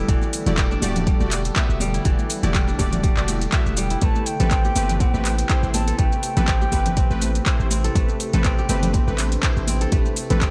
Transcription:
Already playing: D3 G3 A3 B3 D4 E4 A4
0.08 E1 E3 A3 F#4 G4 D5, kick, closed hi-hat, shaker
0.22 muted conga, shaker
0.33 open hi-hat, shaker
0.46 E1 A3 E4 F#4 G4 D5, closed hi-hat, low conga, shaker
0.57 G3, kick, clap, closed hi-hat, muted conga, shaker
0.71 D4, high conga, shaker
0.82 D1 G3 A3 F#4 G4 D5, open hi-hat, high conga, shaker
0.96 closed hi-hat, low conga, shaker
1.07 G3, kick, closed hi-hat, muted conga, high conga, shaker
1.20 E1 A3 F#4 G4 D5, high conga, shaker
1.31 clap, open hi-hat, shaker
1.44 closed hi-hat, muted conga, shaker
1.56 A3 B3 F#4 G4 E5, kick, clap, closed hi-hat, shaker
1.69 E1, shaker
1.80 G3, open hi-hat, muted conga, high conga, shaker
1.94 E4, closed hi-hat, shaker
2.05 E1 E3 A3 F#4 G4 D5, kick, closed hi-hat, shaker
2.19 muted conga, shaker
2.30 open hi-hat, shaker
2.43 E1 A3 E4 F#4 G4 D5, closed hi-hat, high conga, low conga, shaker
2.54 G3, kick, clap, closed hi-hat, muted conga, shaker
2.67 D4, high conga, shaker
2.79 D1 G3 A3 F#4 G4 D5, kick, open hi-hat, high conga, shaker
2.92 closed hi-hat, low conga, shaker
3.03 G3, kick, closed hi-hat, muted conga, shaker
3.17 E1 A3 F#4 G4 D5, clap, shaker
3.28 open hi-hat, high conga, shaker
3.42 closed hi-hat, muted conga, shaker
3.52 A3 B3 F#4 G4 E5 G5, kick, clap, closed hi-hat, shaker
3.58 E5
3.66 E1, shaker
3.77 G3 G5, open hi-hat, muted conga, shaker
3.90 E4, closed hi-hat, shaker
4.01 A1 C3 A3 C4 G4 B4 A5 B5, kick, closed hi-hat, shaker
4.15 muted conga, shaker
4.26 G5, open hi-hat, shaker
4.40 A1 A3 C4 G4 A4 B4, closed hi-hat, low conga, shaker
4.51 C4, kick, clap, closed hi-hat, muted conga, shaker
4.65 G4, high conga, shaker
4.76 G1 A3 C4 G4 B4, open hi-hat, high conga, shaker
4.89 closed hi-hat, low conga, shaker
5.00 C4 F#5, kick, closed hi-hat, muted conga, high conga, shaker
5.11 A1 A3 C4 G4 B4 G5, high conga, shaker
5.25 clap, open hi-hat, shaker
5.39 closed hi-hat, muted conga, shaker
5.49 A3 C4 E4 G4 C5, kick, clap, closed hi-hat, shaker
5.63 A1, shaker
5.73 C4 A5, open hi-hat, muted conga, high conga, shaker
5.88 A4, closed hi-hat, shaker
5.98 A1 A3 C4 G4 B4 G5, kick, closed hi-hat, shaker
6.12 muted conga, shaker
6.23 open hi-hat, shaker
6.37 A1 A3 C4 G4 A4 B4, closed hi-hat, high conga, low conga, shaker
6.48 C4, kick, clap, closed hi-hat, muted conga, shaker
6.61 G4, high conga, shaker
6.72 G1 A3 C4 G4 B4, kick, open hi-hat, high conga, shaker
6.86 closed hi-hat, low conga, shaker
6.97 C4, kick, closed hi-hat, muted conga, shaker
7.10 A1 A3 C4 G4 B4, shaker
7.22 open hi-hat, high conga, shaker
7.35 closed hi-hat, muted conga, shaker
7.46 A3 C4 E4 G4 C5, kick, clap, closed hi-hat, shaker
7.60 A1, shaker
7.71 C4, open hi-hat, muted conga, shaker
7.84 A4, closed hi-hat, shaker
7.95 A1 A3 C4 D4 G4 B4, kick, closed hi-hat, shaker
8.09 muted conga, shaker
8.20 open hi-hat, shaker
8.33 A1 A3 C4 G4 A4 B4, closed hi-hat, low conga, shaker
8.44 C4, kick, clap, closed hi-hat, muted conga, shaker
8.58 G4, high conga, shaker
8.69 G1 A3 C4 G4 B4, open hi-hat, high conga, shaker
8.83 closed hi-hat, low conga, shaker
8.93 C4, kick, closed hi-hat, muted conga, high conga, shaker
9.07 A1 A3 C4 G4 B4, high conga, shaker
9.18 clap, open hi-hat, shaker
9.32 closed hi-hat, muted conga, shaker
9.43 A3 C4 E4 G4 C5, kick, clap, closed hi-hat, shaker
9.57 A1, shaker
9.67 C4, open hi-hat, muted conga, high conga, shaker
9.81 A4, closed hi-hat, shaker
9.92 A1 A3 C4 G4 B4, kick, closed hi-hat, shaker
10.05 muted conga, shaker
10.16 open hi-hat, shaker
10.30 A1 A3 C4 G4 A4 B4, closed hi-hat, high conga, low conga, shaker
10.41 C4, kick, clap, closed hi-hat, muted conga, shaker

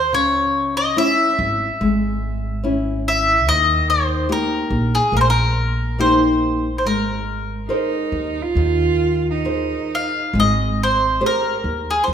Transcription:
Already playing: D#2 C5
0.11 C#2 C#3 C#5
0.77 D#5
0.96 C#4 E4 E5
1.39 G#1
1.81 G#1 G#3
2.64 C#4 E4
3.08 E5
3.46 D#2 D#3 D#5
3.90 C5
4.29 A#3 D#4 G4 A#4
4.70 A#1
4.95 G#4
5.12 A#1 A#3
5.17 A#4
5.21 C5
5.30 A#4
5.98 A#3 D#4 G4 C5
6.78 C5
6.84 G#1 G#3 A#4
7.68 D#4 G#4 A#4 C5
8.12 D#2
8.42 F4
8.55 D#2 D#3
9.31 D#4
9.45 G#4 A#4 C5
9.95 F5
10.34 G#1 G#3
10.40 D#5
10.83 C5
11.21 G4 G#4 C5
11.26 A#4
11.64 D#2
11.91 G#4
12.04 D#3 C5
12.08 D#2

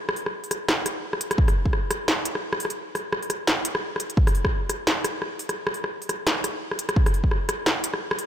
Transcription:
0.09 cross-stick
0.16 open hi-hat
0.26 cross-stick
0.44 open hi-hat
0.51 cross-stick, closed hi-hat
0.68 cross-stick, snare
0.86 cross-stick, closed hi-hat
1.13 cross-stick
1.21 closed hi-hat
1.31 cross-stick, closed hi-hat
1.38 kick
1.48 cross-stick, open hi-hat
1.65 kick
1.73 cross-stick
1.91 cross-stick, closed hi-hat
2.08 cross-stick, snare
2.25 closed hi-hat
2.35 cross-stick
2.53 cross-stick
2.60 open hi-hat
2.65 cross-stick
2.70 closed hi-hat
2.95 cross-stick, open hi-hat
3.13 cross-stick
3.22 open hi-hat
3.30 cross-stick, closed hi-hat
3.47 snare
3.65 closed hi-hat
3.75 cross-stick
3.96 cross-stick, closed hi-hat
4.10 closed hi-hat
4.17 kick
4.27 cross-stick, open hi-hat
4.35 open hi-hat
4.45 kick, cross-stick
4.69 cross-stick, closed hi-hat
4.87 cross-stick, snare
5.04 cross-stick, closed hi-hat
5.22 cross-stick
5.39 open hi-hat
5.49 cross-stick, closed hi-hat
5.67 cross-stick
5.74 open hi-hat
5.84 cross-stick
6.02 open hi-hat
6.09 cross-stick, closed hi-hat
6.27 cross-stick, snare
6.44 cross-stick, closed hi-hat
6.71 cross-stick
6.79 closed hi-hat
6.89 cross-stick, closed hi-hat
6.96 kick
7.06 cross-stick, open hi-hat
7.14 open hi-hat
7.24 kick
7.31 cross-stick
7.49 cross-stick, closed hi-hat
7.66 cross-stick, snare
7.84 closed hi-hat
7.94 cross-stick
8.11 cross-stick
8.19 open hi-hat

